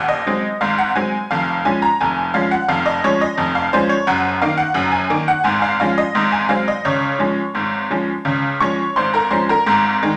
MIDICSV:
0, 0, Header, 1, 2, 480
1, 0, Start_track
1, 0, Key_signature, -5, "major"
1, 0, Tempo, 694444
1, 896, Time_signature, 2, 2, 24, 8
1, 4252, Tempo, 703400
1, 6992, End_track
2, 0, Start_track
2, 0, Title_t, "Honky-tonk piano"
2, 0, Program_c, 0, 3
2, 0, Note_on_c, 0, 27, 46
2, 0, Note_on_c, 0, 39, 60
2, 59, Note_on_c, 0, 75, 72
2, 141, Note_off_c, 0, 27, 0
2, 142, Note_off_c, 0, 39, 0
2, 182, Note_on_c, 0, 54, 43
2, 187, Note_on_c, 0, 56, 41
2, 190, Note_on_c, 0, 60, 43
2, 312, Note_off_c, 0, 54, 0
2, 316, Note_off_c, 0, 56, 0
2, 318, Note_off_c, 0, 60, 0
2, 400, Note_off_c, 0, 75, 0
2, 420, Note_on_c, 0, 77, 75
2, 424, Note_on_c, 0, 32, 57
2, 424, Note_on_c, 0, 44, 60
2, 538, Note_off_c, 0, 77, 0
2, 542, Note_on_c, 0, 78, 71
2, 624, Note_off_c, 0, 44, 0
2, 625, Note_off_c, 0, 32, 0
2, 659, Note_off_c, 0, 78, 0
2, 659, Note_on_c, 0, 80, 72
2, 662, Note_on_c, 0, 54, 38
2, 666, Note_on_c, 0, 56, 44
2, 668, Note_on_c, 0, 60, 39
2, 792, Note_off_c, 0, 54, 0
2, 796, Note_off_c, 0, 56, 0
2, 797, Note_off_c, 0, 60, 0
2, 886, Note_off_c, 0, 80, 0
2, 903, Note_on_c, 0, 77, 73
2, 908, Note_on_c, 0, 29, 57
2, 908, Note_on_c, 0, 41, 59
2, 1107, Note_off_c, 0, 29, 0
2, 1107, Note_off_c, 0, 41, 0
2, 1128, Note_off_c, 0, 77, 0
2, 1141, Note_on_c, 0, 80, 79
2, 1142, Note_on_c, 0, 53, 44
2, 1147, Note_on_c, 0, 56, 42
2, 1147, Note_on_c, 0, 61, 44
2, 1259, Note_off_c, 0, 80, 0
2, 1260, Note_on_c, 0, 82, 74
2, 1272, Note_off_c, 0, 53, 0
2, 1276, Note_off_c, 0, 56, 0
2, 1276, Note_off_c, 0, 61, 0
2, 1378, Note_off_c, 0, 82, 0
2, 1386, Note_on_c, 0, 80, 71
2, 1388, Note_on_c, 0, 29, 65
2, 1390, Note_on_c, 0, 41, 55
2, 1574, Note_off_c, 0, 80, 0
2, 1587, Note_off_c, 0, 29, 0
2, 1588, Note_off_c, 0, 41, 0
2, 1618, Note_on_c, 0, 77, 78
2, 1621, Note_on_c, 0, 53, 41
2, 1622, Note_on_c, 0, 56, 42
2, 1628, Note_on_c, 0, 61, 43
2, 1737, Note_off_c, 0, 77, 0
2, 1738, Note_on_c, 0, 78, 80
2, 1752, Note_off_c, 0, 53, 0
2, 1753, Note_off_c, 0, 56, 0
2, 1757, Note_off_c, 0, 61, 0
2, 1855, Note_on_c, 0, 77, 80
2, 1857, Note_off_c, 0, 78, 0
2, 1857, Note_on_c, 0, 41, 72
2, 1858, Note_on_c, 0, 29, 64
2, 1974, Note_on_c, 0, 75, 78
2, 1976, Note_off_c, 0, 77, 0
2, 2061, Note_off_c, 0, 41, 0
2, 2062, Note_off_c, 0, 29, 0
2, 2096, Note_off_c, 0, 75, 0
2, 2102, Note_on_c, 0, 56, 44
2, 2102, Note_on_c, 0, 73, 81
2, 2104, Note_on_c, 0, 53, 44
2, 2108, Note_on_c, 0, 61, 48
2, 2220, Note_off_c, 0, 73, 0
2, 2221, Note_on_c, 0, 75, 76
2, 2232, Note_off_c, 0, 56, 0
2, 2234, Note_off_c, 0, 53, 0
2, 2237, Note_off_c, 0, 61, 0
2, 2333, Note_on_c, 0, 41, 67
2, 2334, Note_on_c, 0, 29, 67
2, 2411, Note_off_c, 0, 75, 0
2, 2455, Note_on_c, 0, 77, 82
2, 2538, Note_off_c, 0, 29, 0
2, 2538, Note_off_c, 0, 41, 0
2, 2575, Note_off_c, 0, 77, 0
2, 2579, Note_on_c, 0, 72, 82
2, 2583, Note_on_c, 0, 53, 49
2, 2586, Note_on_c, 0, 56, 49
2, 2587, Note_on_c, 0, 61, 56
2, 2691, Note_on_c, 0, 73, 72
2, 2697, Note_off_c, 0, 72, 0
2, 2712, Note_off_c, 0, 53, 0
2, 2714, Note_off_c, 0, 56, 0
2, 2715, Note_off_c, 0, 61, 0
2, 2813, Note_off_c, 0, 73, 0
2, 2814, Note_on_c, 0, 42, 79
2, 2814, Note_on_c, 0, 78, 88
2, 2817, Note_on_c, 0, 30, 73
2, 3018, Note_off_c, 0, 42, 0
2, 3019, Note_off_c, 0, 30, 0
2, 3041, Note_off_c, 0, 78, 0
2, 3052, Note_on_c, 0, 77, 86
2, 3055, Note_on_c, 0, 51, 48
2, 3058, Note_on_c, 0, 58, 47
2, 3059, Note_on_c, 0, 63, 55
2, 3162, Note_on_c, 0, 78, 93
2, 3172, Note_off_c, 0, 77, 0
2, 3186, Note_off_c, 0, 51, 0
2, 3188, Note_off_c, 0, 58, 0
2, 3189, Note_off_c, 0, 63, 0
2, 3279, Note_on_c, 0, 30, 72
2, 3281, Note_on_c, 0, 42, 76
2, 3358, Note_off_c, 0, 78, 0
2, 3399, Note_on_c, 0, 80, 92
2, 3488, Note_off_c, 0, 30, 0
2, 3489, Note_off_c, 0, 42, 0
2, 3525, Note_on_c, 0, 51, 51
2, 3526, Note_on_c, 0, 58, 52
2, 3529, Note_on_c, 0, 63, 51
2, 3596, Note_off_c, 0, 80, 0
2, 3650, Note_on_c, 0, 78, 96
2, 3659, Note_off_c, 0, 51, 0
2, 3659, Note_off_c, 0, 58, 0
2, 3662, Note_off_c, 0, 63, 0
2, 3759, Note_on_c, 0, 80, 88
2, 3764, Note_on_c, 0, 44, 74
2, 3767, Note_on_c, 0, 32, 65
2, 3770, Note_off_c, 0, 78, 0
2, 3885, Note_off_c, 0, 80, 0
2, 3885, Note_on_c, 0, 77, 94
2, 3971, Note_off_c, 0, 44, 0
2, 3973, Note_off_c, 0, 32, 0
2, 3998, Note_off_c, 0, 77, 0
2, 4009, Note_on_c, 0, 77, 87
2, 4015, Note_on_c, 0, 56, 55
2, 4016, Note_on_c, 0, 53, 45
2, 4022, Note_on_c, 0, 61, 53
2, 4130, Note_off_c, 0, 77, 0
2, 4132, Note_on_c, 0, 75, 79
2, 4147, Note_off_c, 0, 53, 0
2, 4147, Note_off_c, 0, 56, 0
2, 4152, Note_off_c, 0, 61, 0
2, 4251, Note_on_c, 0, 32, 67
2, 4251, Note_on_c, 0, 44, 80
2, 4324, Note_off_c, 0, 75, 0
2, 4368, Note_on_c, 0, 80, 80
2, 4455, Note_off_c, 0, 32, 0
2, 4455, Note_off_c, 0, 44, 0
2, 4483, Note_on_c, 0, 54, 44
2, 4484, Note_on_c, 0, 77, 72
2, 4488, Note_on_c, 0, 56, 42
2, 4489, Note_off_c, 0, 80, 0
2, 4493, Note_on_c, 0, 60, 45
2, 4607, Note_off_c, 0, 77, 0
2, 4611, Note_on_c, 0, 75, 65
2, 4618, Note_off_c, 0, 54, 0
2, 4621, Note_off_c, 0, 56, 0
2, 4625, Note_off_c, 0, 60, 0
2, 4728, Note_on_c, 0, 37, 52
2, 4729, Note_on_c, 0, 73, 59
2, 4731, Note_off_c, 0, 75, 0
2, 4732, Note_on_c, 0, 49, 59
2, 4934, Note_off_c, 0, 37, 0
2, 4936, Note_off_c, 0, 49, 0
2, 4960, Note_on_c, 0, 53, 35
2, 4966, Note_on_c, 0, 56, 44
2, 4966, Note_on_c, 0, 61, 37
2, 5096, Note_off_c, 0, 53, 0
2, 5099, Note_off_c, 0, 56, 0
2, 5100, Note_off_c, 0, 61, 0
2, 5204, Note_on_c, 0, 44, 48
2, 5206, Note_on_c, 0, 32, 50
2, 5412, Note_off_c, 0, 44, 0
2, 5413, Note_off_c, 0, 32, 0
2, 5448, Note_on_c, 0, 53, 35
2, 5453, Note_on_c, 0, 56, 31
2, 5455, Note_on_c, 0, 61, 36
2, 5582, Note_off_c, 0, 53, 0
2, 5585, Note_off_c, 0, 56, 0
2, 5587, Note_off_c, 0, 61, 0
2, 5683, Note_on_c, 0, 49, 56
2, 5686, Note_on_c, 0, 37, 46
2, 5892, Note_off_c, 0, 49, 0
2, 5893, Note_off_c, 0, 37, 0
2, 5926, Note_on_c, 0, 85, 79
2, 5927, Note_off_c, 0, 73, 0
2, 5932, Note_on_c, 0, 53, 35
2, 5933, Note_on_c, 0, 56, 35
2, 5937, Note_on_c, 0, 61, 36
2, 5938, Note_on_c, 0, 73, 57
2, 6065, Note_off_c, 0, 53, 0
2, 6065, Note_off_c, 0, 56, 0
2, 6069, Note_off_c, 0, 61, 0
2, 6158, Note_off_c, 0, 85, 0
2, 6159, Note_off_c, 0, 73, 0
2, 6170, Note_on_c, 0, 84, 74
2, 6174, Note_on_c, 0, 44, 45
2, 6175, Note_on_c, 0, 32, 48
2, 6179, Note_on_c, 0, 72, 56
2, 6289, Note_off_c, 0, 72, 0
2, 6289, Note_on_c, 0, 82, 66
2, 6292, Note_off_c, 0, 84, 0
2, 6296, Note_on_c, 0, 70, 52
2, 6378, Note_off_c, 0, 44, 0
2, 6379, Note_off_c, 0, 32, 0
2, 6404, Note_on_c, 0, 84, 64
2, 6406, Note_on_c, 0, 53, 35
2, 6407, Note_off_c, 0, 70, 0
2, 6407, Note_on_c, 0, 56, 39
2, 6411, Note_on_c, 0, 72, 53
2, 6412, Note_off_c, 0, 82, 0
2, 6412, Note_on_c, 0, 61, 38
2, 6524, Note_off_c, 0, 72, 0
2, 6529, Note_off_c, 0, 84, 0
2, 6533, Note_on_c, 0, 82, 69
2, 6539, Note_on_c, 0, 70, 58
2, 6540, Note_off_c, 0, 53, 0
2, 6541, Note_off_c, 0, 56, 0
2, 6544, Note_off_c, 0, 61, 0
2, 6649, Note_on_c, 0, 44, 82
2, 6652, Note_on_c, 0, 32, 73
2, 6854, Note_off_c, 0, 44, 0
2, 6856, Note_off_c, 0, 32, 0
2, 6895, Note_on_c, 0, 51, 52
2, 6897, Note_on_c, 0, 56, 55
2, 6897, Note_on_c, 0, 63, 59
2, 6915, Note_off_c, 0, 82, 0
2, 6987, Note_off_c, 0, 70, 0
2, 6992, Note_off_c, 0, 51, 0
2, 6992, Note_off_c, 0, 56, 0
2, 6992, Note_off_c, 0, 63, 0
2, 6992, End_track
0, 0, End_of_file